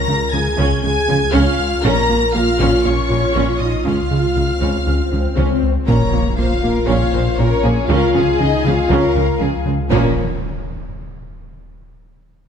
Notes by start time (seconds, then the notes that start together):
Already playing: C#2 F4 A#4 A#5 A#6
0.08 C#2 C#3 G#3
0.33 C#2 C#3 F3 G#3 G#4 G#5 G#6
0.58 C#2 C#3 C#4
0.83 C#2 C#3 G#3 C#4 G#4 G#5 G#6
1.08 C#2 C#3 F3 C#4
1.33 C#2 C#3 C#4 F4 F5 F6
1.59 C#2
1.84 A#1 A#2 A#3 C#4 F4 A#4 A#5 A#6
2.09 A#1 A#2 A#3 F4
2.34 A#1 A#2 F3 A#3 F4 F5 F6
2.59 A#1 A#2 A#3 C#4
2.85 A#1 A#2 A#3 C#4 A#4 C#5 C#6
3.10 A#1 A#2 F3 A#4
3.35 A#1 A#2 A#3 C#4
3.60 A#2 D#4 D#5 D#6
3.85 C#2 C#3 C#4 F4 F5 F6, swell
4.11 C#2 C#3 G#3
4.36 C#2 C#3 F3 G#3
4.60 C#2 C#3 C#4
4.86 C#2 C#3 G#3 C#4
5.11 C#2 C#3 F3 C#4
5.36 C#2 C#3 C#4
5.63 C#2
5.87 A#1 A#2 A#3 C#4 F4 A#4 C#5 A#5, impact
6.12 A#1 A#2 F3 A#3 F4
6.37 A#1 A#2 A#3 F4 C5 F5
6.63 A#1 A#2 F3 A#3 F4 A#4
6.88 A#1 A#2 A#3 C#4 F4 C#5 F5
7.13 A#1 A#2 F3 A#4 C5
7.39 A#1 A#2 A#3 C#4 A#4 C#5
7.64 A#1 A#2 F3 A#3 F4 G#4
7.89 C#2 C#3 C#4 F4 A#4 F5
8.14 C#2 C#3 F3 G#3 G#4
8.39 C#2 C#3 G#3 D#4 D#5
8.65 C#2 C#3 F3 G#3 F4 F5
8.90 C#2 C#3 C#4 A#4
9.15 C#2 C#3 F3 C#4
9.40 C#2 C#3 F3 G#3 G#4
9.66 C#2 C#3 F3 G#3
9.91 A#1 A#2 F3 A#3 C#4 C#5, impact